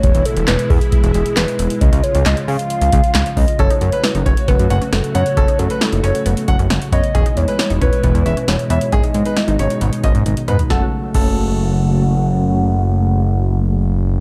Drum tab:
CC |----------------|----------------|----------------|----------------|
HH |xxxxxxoxxxxxxxxx|xxxxxxoxxxxxxxox|xxxxxxxxxxxxxxxx|xxxxxxxxxxxxxxxx|
CP |----x-------x---|----x-------x---|----------------|----------------|
SD |----o-------o---|----o-------o---|----o-------o---|----o-------o---|
T1 |----------------|----------------|----------------|----------------|
T2 |----------------|----------------|----------------|----------------|
FT |----------------|----------------|----------------|----------------|
BD |o-----o-o-------|o---------o---o-|o-----o-o-------|o---------o---o-|

CC |----------------|----------------|----x-----------|----------------|
HH |xxxxxxxxxxxxxxxx|xxxxxxxxxxxxxxxx|----------------|----------------|
CP |----------------|----------------|----------------|----------------|
SD |----o-------o---|----o-----------|o---------------|----------------|
T1 |----------------|------------o---|----------------|----------------|
T2 |----------------|--------------o-|----------------|----------------|
FT |----------------|---------------o|----------------|----------------|
BD |o-----o-o-------|o---------o-----|o---o-----------|----------------|